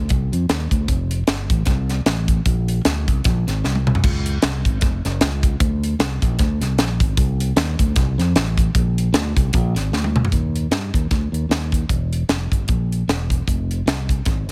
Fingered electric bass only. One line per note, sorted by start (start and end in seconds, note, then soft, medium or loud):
0.10 0.29 C2 medium
0.32 0.47 F2 medium
0.49 0.69 D#2 medium
0.71 0.86 D2 medium
0.88 1.22 F1 loud
1.28 1.47 G1 medium
1.50 1.65 A1 medium
1.67 2.00 C2 medium
2.06 2.40 A1 medium
2.46 2.79 A#1 medium
2.85 3.08 D2 medium
3.08 3.22 C2 medium
3.25 3.44 A#1 medium
3.47 3.61 G#1 medium
3.64 3.97 C2 medium
4.04 4.37 C#2 medium
4.43 4.62 C2 medium
4.65 4.82 G#1 medium
4.82 5.01 F1 loud
5.05 5.19 F#1 medium
5.21 5.55 C#2 medium
5.60 5.94 D2 medium
5.99 6.18 C2 medium
6.22 6.37 A#1 medium
6.39 6.58 D2 medium
6.61 6.78 C2 medium
6.78 6.97 A#1 medium
7.00 7.15 G#1 medium
7.17 7.51 C2 loud
7.56 7.75 D#2 medium
7.80 7.94 D2 medium
7.96 8.15 C2 medium
8.18 8.33 F2 medium
8.35 8.69 A1 medium
8.75 9.08 A#1 loud
9.13 9.32 D2 medium
9.36 9.51 C2 medium
9.54 9.73 A#1 loud
9.75 9.89 G#1 loud
9.92 10.25 D2 medium
10.32 10.66 D#2 medium
10.71 10.90 G2 medium
10.94 11.08 D#2 medium
11.11 11.30 D2 medium
11.32 11.47 D#2 medium
11.49 11.83 D#2 medium
11.89 12.23 E1 medium
12.29 12.48 F1 medium
12.51 12.66 G1 medium
12.69 13.02 A#1 medium
13.08 13.41 E1 medium
13.47 13.80 F1 medium
13.86 14.19 C2 medium
14.26 14.48 G#1 medium
14.48 14.52 F1 medium